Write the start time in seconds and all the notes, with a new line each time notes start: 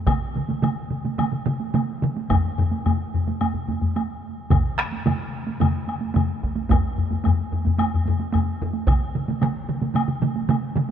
0.07 taiko, taiko mid, taiko high, high woodblock
0.36 taiko mid
0.48 taiko mid, taiko high
0.62 taiko mid, taiko high, high woodblock
0.91 taiko mid
1.05 taiko mid, taiko high
1.18 taiko mid, taiko high, high woodblock
1.33 taiko mid
1.47 taiko mid, taiko high
1.60 taiko high
1.74 taiko mid, taiko high, high woodblock
2.02 taiko mid
2.17 taiko high
2.30 taiko, taiko low-mid, taiko high, high woodblock
2.58 taiko low-mid
2.71 taiko high
2.86 taiko low-mid, taiko high, high woodblock
3.14 taiko low-mid
3.27 taiko low-mid, taiko high
3.41 taiko low-mid, taiko high, high woodblock
3.54 taiko low-mid
3.68 taiko low-mid, taiko high
3.81 taiko low-mid, taiko high
3.96 taiko high, high woodblock
4.50 taiko, taiko low-mid, taiko mid, taiko high, high woodblock
4.79 taiko rim
4.92 taiko high
5.06 taiko low-mid, taiko mid, taiko high, high woodblock
5.47 taiko high
5.60 taiko low-mid, taiko mid, taiko high, high woodblock
5.88 taiko high, high woodblock
6.01 taiko high
6.14 taiko low-mid, taiko mid, taiko high, high woodblock
6.43 taiko
6.55 taiko high
6.69 taiko, taiko low-mid, taiko high, high woodblock
6.98 taiko low-mid
7.11 taiko low-mid, taiko high
7.24 taiko low-mid, taiko high, high woodblock
7.53 taiko low-mid
7.65 taiko low-mid, taiko high
7.78 taiko low-mid, taiko high, high woodblock
7.94 taiko low-mid
8.05 taiko low-mid, taiko high
8.19 taiko high
8.32 taiko low-mid, taiko high, high woodblock
8.62 taiko low-mid
8.73 taiko high
8.87 taiko, taiko mid, taiko high, high woodblock
9.15 taiko mid
9.28 taiko mid, taiko high
9.41 taiko mid, taiko high, high woodblock
9.69 taiko mid
9.81 taiko mid, taiko high
9.95 taiko mid, taiko high, high woodblock
10.08 taiko mid
10.22 taiko mid, taiko high
10.36 taiko high
10.49 taiko mid, taiko high, high woodblock
10.76 taiko mid